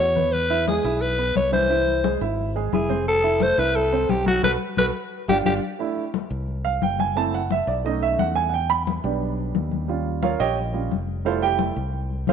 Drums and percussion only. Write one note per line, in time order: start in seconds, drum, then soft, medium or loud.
0.16 low conga medium
0.34 high conga soft
0.51 high conga soft
0.68 high conga medium
0.84 high conga soft
1.01 high conga soft
1.19 high conga soft
1.36 high conga medium
1.53 high conga medium
1.87 high conga soft
2.04 high conga medium
2.22 high conga soft
2.39 high conga soft
2.56 high conga soft
2.73 high conga loud
2.89 high conga medium
3.06 high conga soft
3.23 high conga soft
3.40 high conga medium
3.58 high conga soft
3.76 high conga soft
3.93 high conga soft
4.09 high conga medium
4.26 high conga medium
4.43 high conga loud
4.77 high conga medium
5.29 high conga loud
5.46 high conga medium
5.80 high conga soft
5.97 high conga soft
6.14 high conga medium
6.31 high conga soft
6.48 high conga soft
6.66 high conga soft
6.82 high conga medium
6.99 high conga medium
7.16 high conga soft
7.34 high conga soft
7.51 high conga medium
7.68 high conga soft
7.85 high conga soft
8.02 high conga soft
8.19 high conga medium
8.53 high conga soft
8.70 high conga soft
8.87 high conga medium
9.05 high conga soft
9.22 high conga soft
9.38 high conga soft
9.55 high conga medium
9.71 high conga medium
9.88 high conga soft
10.06 high conga soft
10.23 high conga medium
10.40 high conga soft
10.57 high conga soft
10.74 high conga soft
10.92 high conga medium
11.26 high conga soft
11.42 high conga soft
11.59 high conga medium
11.76 high conga soft
11.93 high conga soft
12.10 high conga soft
12.27 high conga medium